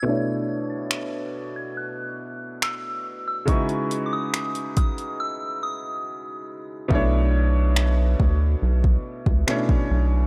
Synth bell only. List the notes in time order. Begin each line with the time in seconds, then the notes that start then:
Already playing: G#6
0.70 A6
1.56 G#6
1.77 F#6
2.63 E6
3.28 E6
3.49 C#6
4.06 D6
4.13 D#6
4.77 D#6
5.20 E6
5.63 D#6